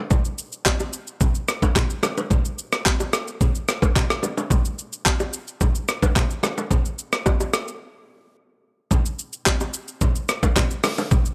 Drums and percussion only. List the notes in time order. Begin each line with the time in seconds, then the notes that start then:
0.10 kick, low conga, shaker
0.25 shaker
0.38 shaker
0.52 shaker
0.66 kick, clap, high bongo, shaker
0.80 high bongo, shaker
0.93 shaker
1.07 shaker
1.21 kick, low conga, shaker
1.35 shaker
1.48 cross-stick, shaker
1.62 kick, low bongo, shaker
1.76 kick, clap, high bongo, low conga, shaker
1.90 shaker
2.03 cross-stick, high bongo, low bongo, shaker
2.18 low bongo, shaker
2.30 kick, low conga, shaker
2.45 shaker
2.59 shaker
2.73 cross-stick, shaker
2.85 kick, clap, high bongo, shaker
3.00 high bongo, shaker
3.13 cross-stick, shaker
3.28 shaker
3.41 kick, low conga, shaker
3.55 shaker
3.68 cross-stick, shaker
3.82 kick, low bongo, shaker
3.96 kick, clap, high bongo, low conga, shaker
4.10 cross-stick, shaker
4.23 high bongo, low bongo, shaker
4.37 low bongo, shaker
4.50 kick, low conga, shaker
4.65 shaker
4.79 shaker
4.93 shaker
5.05 kick, clap, high bongo, shaker
5.20 high bongo, shaker
5.33 shaker
5.48 shaker
5.61 kick, low conga, shaker
5.75 shaker
5.88 cross-stick, shaker
6.02 kick, low bongo, shaker
6.16 kick, clap, high bongo, low conga, shaker
6.30 shaker
6.43 cross-stick, high bongo, low bongo, shaker
6.58 low bongo, shaker
6.70 kick, low conga, shaker
6.85 shaker
6.99 shaker
7.13 cross-stick, shaker
7.26 kick, high bongo, shaker
7.40 high bongo, shaker
7.54 cross-stick, shaker
7.68 shaker
8.91 kick, low conga, shaker
9.06 shaker
9.19 shaker
9.33 shaker
9.46 kick, clap, high bongo, shaker
9.60 high bongo, shaker
9.74 shaker
9.88 shaker
10.01 kick, low conga, shaker
10.16 shaker
10.29 cross-stick, shaker
10.43 kick, low bongo, shaker
10.56 kick, clap, high bongo, low conga, shaker
10.71 shaker
10.84 cross-stick, open hi-hat, low bongo, shaker
10.98 low bongo, shaker
11.11 kick, low conga, shaker
11.26 shaker